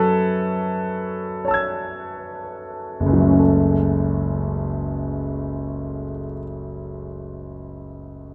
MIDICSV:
0, 0, Header, 1, 2, 480
1, 0, Start_track
1, 0, Key_signature, 3, "minor"
1, 0, Tempo, 1587302
1, 434, Tempo, 1954397
1, 913, Time_signature, 3, 2, 24, 8
1, 914, Tempo, 1739130
1, 2282, End_track
2, 0, Start_track
2, 0, Title_t, "Grand piano"
2, 0, Program_c, 0, 0
2, 0, Control_c, 0, 64, 127
2, 0, Note_on_c, 0, 42, 49
2, 0, Note_on_c, 0, 54, 35
2, 0, Note_on_c, 0, 69, 69
2, 0, Note_on_c, 0, 71, 67
2, 0, Note_on_c, 0, 73, 70
2, 437, Note_off_c, 0, 73, 0
2, 437, Note_on_c, 0, 73, 29
2, 445, Note_on_c, 0, 81, 31
2, 452, Note_on_c, 0, 88, 30
2, 459, Note_on_c, 0, 92, 32
2, 818, Note_on_c, 0, 30, 35
2, 833, Note_on_c, 0, 37, 31
2, 847, Note_off_c, 0, 54, 0
2, 850, Note_on_c, 0, 54, 33
2, 867, Note_on_c, 0, 57, 30
2, 884, Note_on_c, 0, 61, 33
2, 899, Note_on_c, 0, 66, 31
2, 904, Note_off_c, 0, 42, 0
2, 905, Note_off_c, 0, 73, 0
2, 909, Note_off_c, 0, 81, 0
2, 910, Note_off_c, 0, 69, 0
2, 912, Note_off_c, 0, 88, 0
2, 914, Note_on_c, 0, 69, 42
2, 916, Note_off_c, 0, 92, 0
2, 921, Control_c, 0, 64, 0
2, 922, Note_off_c, 0, 71, 0
2, 1010, Control_c, 0, 64, 127
2, 1648, Note_off_c, 0, 30, 0
2, 1664, Note_off_c, 0, 37, 0
2, 1684, Note_off_c, 0, 54, 0
2, 1702, Note_off_c, 0, 57, 0
2, 1721, Note_off_c, 0, 61, 0
2, 1739, Note_off_c, 0, 66, 0
2, 1755, Note_off_c, 0, 69, 0
2, 2282, End_track
0, 0, End_of_file